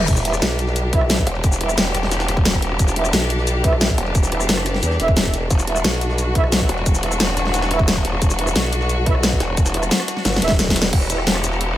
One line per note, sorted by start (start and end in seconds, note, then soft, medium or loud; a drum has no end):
0.00 10.89 G3 medium
0.08 0.41 E1 loud
0.08 10.89 D4 medium
0.08 5.48 G4 medium
0.08 kick loud
0.08 closed hi-hat medium
0.08 crash medium
0.08 shaker soft
0.17 snare medium
0.17 shaker medium
0.25 0.32 E4 medium
0.25 0.32 B4 medium
0.25 0.32 E5 medium
0.25 closed hi-hat loud
0.25 closed hi-hat medium
0.34 cross-stick medium
0.34 shaker medium
0.42 1.25 B1 loud
0.42 snare loud
0.42 closed hi-hat medium
0.42 shaker soft
0.51 snare medium
0.59 closed hi-hat loud
0.59 closed hi-hat medium
0.59 shaker soft
0.67 snare soft
0.76 closed hi-hat medium
0.76 shaker soft
0.93 1.00 E4 loud
0.93 1.00 B4 medium
0.93 1.00 E5 loud
0.93 kick loud
0.93 closed hi-hat loud
0.93 closed hi-hat medium
1.01 cross-stick medium
1.10 snare loud
1.10 closed hi-hat medium
1.10 shaker medium
1.18 kick medium
1.18 shaker soft
1.27 1.76 E1 medium
1.27 closed hi-hat loud
1.27 closed hi-hat medium
1.35 closed hi-hat soft
1.44 kick loud
1.44 closed hi-hat medium
1.44 shaker soft
1.52 snare medium
1.52 shaker medium
1.61 1.68 E4 medium
1.61 1.68 B4 medium
1.61 1.68 E5 medium
1.61 closed hi-hat medium
1.69 cross-stick medium
1.69 shaker medium
1.78 2.61 E1 loud
1.78 snare loud
1.78 closed hi-hat medium
1.78 shaker soft
1.86 snare medium
1.95 cross-stick soft
1.95 snare medium
1.95 closed hi-hat medium
1.95 shaker soft
2.03 snare soft
2.11 snare loud
2.11 closed hi-hat medium
2.11 shaker soft
2.20 snare loud
2.20 closed hi-hat medium
2.28 snare medium
2.28 closed hi-hat medium
2.37 kick loud
2.37 closed hi-hat soft
2.45 snare loud
2.45 closed hi-hat medium
2.45 shaker soft
2.54 kick medium
2.54 snare soft
2.54 shaker soft
2.62 2.78 E1 loud
2.62 snare soft
2.62 closed hi-hat medium
2.79 3.12 E1 loud
2.79 kick loud
2.79 closed hi-hat medium
2.79 shaker soft
2.88 snare medium
2.88 shaker medium
2.96 3.04 E4 medium
2.96 3.04 B4 medium
2.96 3.04 E5 medium
2.96 closed hi-hat medium
3.05 cross-stick soft
3.05 shaker medium
3.13 3.97 B1 loud
3.13 snare loud
3.13 closed hi-hat medium
3.13 shaker soft
3.22 snare medium
3.30 closed hi-hat medium
3.30 shaker soft
3.39 snare soft
3.47 closed hi-hat medium
3.47 shaker soft
3.64 3.71 E4 loud
3.64 3.71 B4 medium
3.64 3.71 E5 loud
3.64 kick loud
3.64 closed hi-hat medium
3.73 cross-stick medium
3.81 snare loud
3.81 closed hi-hat medium
3.81 shaker soft
3.89 kick medium
3.89 shaker soft
3.98 4.47 E1 medium
3.98 closed hi-hat medium
4.06 closed hi-hat soft
4.15 kick loud
4.15 closed hi-hat medium
4.15 shaker soft
4.23 snare medium
4.23 shaker medium
4.32 4.39 E4 medium
4.32 4.39 B4 medium
4.32 4.39 E5 medium
4.32 closed hi-hat medium
4.40 cross-stick soft
4.40 shaker medium
4.49 4.81 F#1 loud
4.49 snare loud
4.49 closed hi-hat medium
4.49 shaker soft
4.57 cross-stick medium
4.57 snare medium
4.66 cross-stick soft
4.66 snare medium
4.66 closed hi-hat medium
4.66 shaker soft
4.74 snare soft
4.83 4.98 E2 loud
4.83 closed hi-hat medium
4.83 shaker soft
4.91 snare medium
5.00 5.49 E1 medium
5.00 5.07 E4 loud
5.00 5.07 B4 medium
5.00 5.07 E5 loud
5.00 snare medium
5.00 closed hi-hat medium
5.08 kick loud
5.08 closed hi-hat soft
5.17 snare loud
5.17 closed hi-hat medium
5.17 shaker soft
5.25 kick medium
5.25 snare soft
5.25 shaker soft
5.34 snare soft
5.34 closed hi-hat medium
5.34 shaker soft
5.50 5.83 E1 loud
5.50 10.91 F#4 medium
5.50 kick loud
5.50 closed hi-hat medium
5.50 shaker medium
5.59 snare medium
5.59 shaker medium
5.67 5.75 E4 medium
5.67 5.75 B4 medium
5.67 5.75 E5 medium
5.67 closed hi-hat medium
5.76 cross-stick soft
5.76 shaker medium
5.84 6.68 B1 loud
5.84 snare loud
5.84 closed hi-hat medium
5.84 shaker soft
5.93 snare medium
6.01 closed hi-hat medium
6.01 shaker soft
6.10 snare soft
6.18 closed hi-hat medium
6.18 shaker soft
6.35 6.43 E4 loud
6.35 6.43 B4 medium
6.35 6.43 E5 loud
6.35 kick loud
6.35 closed hi-hat medium
6.44 cross-stick medium
6.52 snare loud
6.52 closed hi-hat medium
6.52 shaker medium
6.61 kick medium
6.61 shaker soft
6.69 7.19 E1 medium
6.69 closed hi-hat medium
6.78 closed hi-hat soft
6.86 kick loud
6.86 closed hi-hat medium
6.86 shaker medium
6.95 snare medium
6.95 shaker medium
7.03 7.10 E4 medium
7.03 7.10 B4 medium
7.03 7.10 E5 medium
7.03 closed hi-hat medium
7.12 cross-stick soft
7.12 shaker medium
7.20 8.03 E1 loud
7.20 snare loud
7.20 closed hi-hat medium
7.20 shaker medium
7.29 snare medium
7.37 cross-stick soft
7.37 snare medium
7.37 closed hi-hat medium
7.37 shaker soft
7.45 snare soft
7.54 snare loud
7.54 closed hi-hat medium
7.54 shaker medium
7.62 snare loud
7.62 closed hi-hat medium
7.71 7.78 E4 loud
7.71 7.78 B4 medium
7.71 7.78 E5 loud
7.71 snare medium
7.71 closed hi-hat medium
7.79 kick loud
7.79 closed hi-hat soft
7.88 snare loud
7.88 closed hi-hat medium
7.88 shaker medium
7.96 kick medium
7.96 snare soft
7.96 shaker soft
8.05 8.20 E1 medium
8.05 snare soft
8.05 closed hi-hat medium
8.22 8.54 E1 loud
8.22 kick loud
8.22 closed hi-hat medium
8.22 shaker medium
8.30 snare medium
8.30 shaker medium
8.39 8.46 E4 medium
8.39 8.46 B4 medium
8.39 8.46 E5 medium
8.39 closed hi-hat medium
8.47 cross-stick soft
8.47 shaker medium
8.56 9.39 B1 loud
8.56 snare loud
8.56 closed hi-hat medium
8.56 shaker medium
8.64 snare medium
8.73 closed hi-hat medium
8.73 shaker soft
8.81 snare soft
8.89 closed hi-hat medium
8.89 shaker medium
9.06 9.14 E4 loud
9.06 9.14 B4 medium
9.06 9.14 E5 loud
9.06 kick loud
9.06 closed hi-hat loud
9.06 closed hi-hat medium
9.15 cross-stick medium
9.23 snare loud
9.23 closed hi-hat medium
9.23 shaker medium
9.32 kick medium
9.32 shaker soft
9.40 9.90 E1 medium
9.40 snare loud
9.40 closed hi-hat medium
9.40 closed hi-hat loud
9.57 kick loud
9.57 closed hi-hat medium
9.57 shaker medium
9.66 snare loud
9.66 closed hi-hat medium
9.66 shaker medium
9.74 9.82 E4 medium
9.74 9.82 B4 medium
9.74 9.82 E5 medium
9.74 closed hi-hat loud
9.83 cross-stick medium
9.83 closed hi-hat medium
9.83 shaker medium
9.91 snare loud
9.91 closed hi-hat medium
9.91 shaker soft
10.00 cross-stick medium
10.00 snare medium
10.08 cross-stick soft
10.08 snare medium
10.08 closed hi-hat medium
10.08 closed hi-hat loud
10.08 shaker soft
10.17 snare soft
10.25 10.41 G1 loud
10.25 snare loud
10.25 snare medium
10.25 closed hi-hat medium
10.25 shaker medium
10.34 snare soft
10.34 shaker soft
10.36 snare medium
10.42 10.92 E1 loud
10.42 10.49 E4 loud
10.42 10.49 B4 medium
10.42 10.49 E5 loud
10.42 snare soft
10.42 closed hi-hat medium
10.42 closed hi-hat loud
10.48 kick loud
10.48 snare medium
10.50 snare loud
10.50 closed hi-hat medium
10.59 snare medium
10.59 closed hi-hat medium
10.59 shaker medium
10.67 kick medium
10.67 snare loud
10.67 shaker soft
10.76 snare loud
10.76 closed hi-hat medium
10.76 closed hi-hat loud
10.76 shaker soft
10.82 snare loud
10.84 snare soft
10.93 11.76 E1 loud
10.93 11.77 E4 medium
10.93 11.77 F#4 medium
10.93 11.77 G4 medium
10.93 kick loud
10.93 closed hi-hat medium
10.93 crash loud
11.01 snare medium
11.01 shaker soft
11.10 11.17 E4 medium
11.10 11.17 B4 medium
11.10 11.17 E5 medium
11.10 closed hi-hat medium
11.10 closed hi-hat loud
11.10 shaker medium
11.18 cross-stick medium
11.27 snare loud
11.27 closed hi-hat medium
11.35 cross-stick medium
11.35 snare medium
11.44 closed hi-hat medium
11.44 closed hi-hat loud
11.44 shaker medium
11.52 snare soft
11.61 closed hi-hat medium